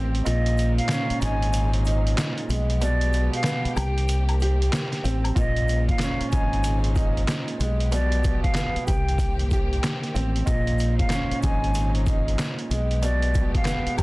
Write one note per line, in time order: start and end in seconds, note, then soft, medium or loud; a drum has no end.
0.00 0.20 A1 loud
0.00 0.25 D#3 medium
0.00 0.25 A#3 medium
0.00 0.25 C4 medium
0.00 0.26 C4 medium
0.00 0.25 G4 medium
0.00 0.27 G4 medium
0.15 closed hi-hat medium
0.24 0.78 A#1 loud
0.24 1.85 A#2 loud
0.24 2.47 C#3 medium
0.24 2.47 G#3 medium
0.24 2.47 D#4 medium
0.24 2.47 C5 medium
0.24 0.73 D#5 loud
0.24 closed hi-hat medium
0.24 shaker medium
0.46 closed hi-hat medium
0.57 closed hi-hat medium
0.57 shaker soft
0.78 1.19 F5 medium
0.78 closed hi-hat medium
0.89 2.50 C#4 medium
0.89 snare loud
0.89 clap medium
0.89 closed hi-hat medium
0.89 shaker medium
1.10 muted fingered electric bass stroke soft
1.10 closed hi-hat medium
1.22 2.14 G#1 loud
1.22 1.84 D#4 medium
1.22 1.71 G#5 medium
1.22 closed hi-hat medium
1.22 shaker medium
1.42 closed hi-hat medium
1.53 closed hi-hat loud
1.53 shaker medium
1.73 closed hi-hat medium
1.85 2.49 D#4 medium
1.85 closed hi-hat medium
1.85 shaker soft
2.07 closed hi-hat soft
2.18 snare loud
2.18 clap medium
2.18 closed hi-hat medium
2.18 shaker medium
2.38 closed hi-hat soft
2.48 3.28 B1 loud
2.48 3.75 F3 medium
2.48 3.75 G#3 medium
2.48 3.77 G#3 medium
2.48 3.75 B3 medium
2.48 5.33 G4 medium
2.48 closed hi-hat medium
2.48 shaker soft
2.70 closed hi-hat soft
2.81 3.77 B2 loud
2.81 3.30 D5 loud
2.81 closed hi-hat medium
2.81 shaker medium
3.01 closed hi-hat medium
3.13 closed hi-hat medium
3.13 shaker soft
3.33 3.75 F5 medium
3.33 closed hi-hat medium
3.44 3.77 B3 medium
3.44 snare loud
3.44 clap medium
3.44 closed hi-hat medium
3.44 shaker medium
3.65 muted fingered electric bass stroke soft
3.65 closed hi-hat medium
3.76 4.69 C2 loud
3.76 5.35 D#3 medium
3.76 5.35 A#3 medium
3.76 5.35 C4 medium
3.76 4.40 G4 medium
3.76 4.26 G5 medium
3.76 closed hi-hat medium
3.76 high woodblock medium
3.76 shaker medium
3.98 closed hi-hat medium
4.08 closed hi-hat loud
4.08 shaker medium
4.29 closed hi-hat medium
4.29 high woodblock medium
4.40 5.37 G4 medium
4.40 closed hi-hat medium
4.40 shaker soft
4.62 closed hi-hat soft
4.73 snare loud
4.73 clap medium
4.73 closed hi-hat medium
4.73 shaker medium
4.92 snare soft
4.92 closed hi-hat soft
5.04 5.31 A1 loud
5.04 5.36 C4 medium
5.04 closed hi-hat medium
5.04 shaker soft
5.24 closed hi-hat soft
5.24 high woodblock medium
5.35 5.89 A#1 loud
5.35 6.96 A#2 loud
5.35 7.57 C#3 medium
5.35 8.83 G#3 medium
5.35 7.57 D#4 medium
5.35 7.57 C5 medium
5.35 5.86 D#5 loud
5.35 kick loud
5.35 closed hi-hat medium
5.35 shaker medium
5.56 closed hi-hat medium
5.68 closed hi-hat medium
5.68 shaker soft
5.89 6.30 F5 medium
5.89 kick loud
5.89 closed hi-hat medium
5.99 7.61 C#4 medium
5.99 snare loud
5.99 clap medium
5.99 closed hi-hat medium
5.99 shaker medium
6.21 muted fingered electric bass stroke soft
6.21 closed hi-hat medium
6.31 7.24 G#1 loud
6.31 6.94 D#4 medium
6.31 6.80 G#5 medium
6.31 kick loud
6.31 closed hi-hat medium
6.31 shaker medium
6.53 closed hi-hat medium
6.64 closed hi-hat loud
6.64 shaker medium
6.84 closed hi-hat medium
6.95 7.59 D#4 medium
6.95 kick loud
6.95 closed hi-hat medium
6.95 shaker soft
7.17 closed hi-hat soft
7.28 snare loud
7.28 clap medium
7.28 closed hi-hat medium
7.28 shaker medium
7.48 closed hi-hat soft
7.59 8.38 B1 loud
7.59 8.86 F3 medium
7.59 8.88 G#3 medium
7.59 8.86 B3 medium
7.59 8.86 G4 medium
7.59 closed hi-hat medium
7.59 shaker soft
7.80 closed hi-hat medium
7.92 8.88 B2 loud
7.92 8.41 D5 loud
7.92 closed hi-hat medium
7.92 shaker medium
8.12 closed hi-hat medium
8.24 kick medium
8.24 closed hi-hat medium
8.24 shaker soft
8.43 8.85 F5 medium
8.43 kick loud
8.43 closed hi-hat medium
8.54 8.87 B3 medium
8.54 snare loud
8.54 clap medium
8.54 closed hi-hat medium
8.54 shaker medium
8.76 muted fingered electric bass stroke soft
8.76 closed hi-hat medium
8.87 9.80 C2 loud
8.87 10.46 D#3 medium
8.87 10.46 A#3 medium
8.87 10.46 C4 medium
8.87 9.51 G4 medium
8.87 10.46 G4 medium
8.87 9.36 G5 medium
8.87 kick loud
8.87 closed hi-hat medium
8.87 shaker medium
9.09 closed hi-hat medium
9.18 kick loud
9.18 closed hi-hat loud
9.18 shaker medium
9.39 closed hi-hat medium
9.51 10.48 G4 medium
9.51 kick loud
9.51 closed hi-hat medium
9.51 shaker soft
9.73 closed hi-hat soft
9.84 snare loud
9.84 clap medium
9.84 closed hi-hat medium
9.84 shaker medium
10.03 snare soft
10.03 closed hi-hat soft
10.14 10.42 A1 loud
10.14 10.47 C4 medium
10.14 closed hi-hat medium
10.14 shaker soft
10.36 closed hi-hat soft
10.45 10.99 A#1 loud
10.45 12.06 A#2 loud
10.45 12.69 C#3 medium
10.45 12.69 G#3 medium
10.45 12.69 D#4 medium
10.45 12.69 C5 medium
10.45 10.95 D#5 loud
10.45 kick loud
10.45 closed hi-hat medium
10.45 shaker medium
10.67 closed hi-hat medium
10.78 closed hi-hat medium
10.78 shaker medium
10.99 11.40 F5 medium
10.99 kick loud
10.99 closed hi-hat medium
11.10 12.71 C#4 medium
11.10 snare loud
11.10 clap medium
11.10 closed hi-hat medium
11.10 shaker medium
11.31 muted fingered electric bass stroke soft
11.31 closed hi-hat medium
11.43 12.35 G#1 loud
11.43 12.04 D#4 medium
11.43 11.91 G#5 medium
11.43 kick loud
11.43 closed hi-hat medium
11.43 shaker medium
11.64 closed hi-hat medium
11.74 closed hi-hat loud
11.74 shaker medium
11.95 closed hi-hat medium
12.06 12.70 D#4 medium
12.06 kick loud
12.06 closed hi-hat medium
12.06 shaker soft
12.28 closed hi-hat soft
12.39 snare loud
12.39 clap medium
12.39 closed hi-hat medium
12.39 shaker medium
12.59 closed hi-hat soft
12.70 13.49 B1 loud
12.70 13.97 F3 medium
12.70 13.97 G#3 medium
12.70 13.99 G#3 medium
12.70 13.97 B3 medium
12.70 14.03 G4 medium
12.70 closed hi-hat medium
12.70 shaker soft
12.91 closed hi-hat medium
13.02 13.98 B2 loud
13.02 13.51 D5 loud
13.02 closed hi-hat medium
13.02 shaker medium
13.22 closed hi-hat medium
13.34 kick medium
13.34 closed hi-hat medium
13.34 shaker soft
13.55 13.97 F5 medium
13.55 kick loud
13.55 closed hi-hat medium
13.65 13.98 B3 medium
13.65 snare loud
13.65 clap medium
13.65 closed hi-hat medium
13.65 shaker medium
13.86 muted fingered electric bass stroke soft
13.86 closed hi-hat medium
13.97 14.03 C2 loud
13.97 14.03 D#3 medium
13.97 14.03 A#3 medium
13.97 14.03 C4 medium
13.97 14.03 G4 medium
13.97 14.03 G5 medium
13.97 kick loud
13.97 closed hi-hat medium
13.97 high woodblock medium
13.97 shaker medium